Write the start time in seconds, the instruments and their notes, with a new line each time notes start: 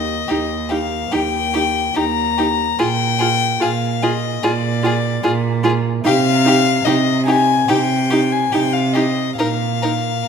Already playing: cello D#2, violin D#5
0.28 cello D#2, viola D#4, violin G4
0.69 viola D#4, violin G4 F5
1.12 cello D#2, viola D#4, violin G4 G5
1.54 viola D#4, violin G4
1.95 cello D#2, viola D#4, violin G4 A#5
2.38 viola D#4, violin G4
2.79 cello A#2, viola F4, violin G#4 G5
3.19 viola F4, violin G#4
3.60 cello A#2, viola F4, violin G#4 F5
4.03 viola F4, violin G#4 D#5
4.42 cello A#2, viola F4, violin G#4 D5
4.83 viola F4, violin G#4
5.23 cello A#2, viola F4, violin G#4
5.63 viola F4, violin G#4
6.04 cello C3, viola D#4, violin G4 F5
6.45 viola D#4, violin G4
6.84 cello C3, viola D#4, violin G4 D#5
7.26 viola D#4, violin G4 G#5
7.68 cello C3, viola D#4, violin G4 G5
8.11 viola D#4, violin G4
8.32 violin G#5
8.52 cello C3, viola D#4, violin G4 G5
8.73 violin F5
8.93 viola D#4, violin G4 D#5
9.37 cello A#2, viola D#4, violin A#4 F5
9.82 viola D#4, violin A#4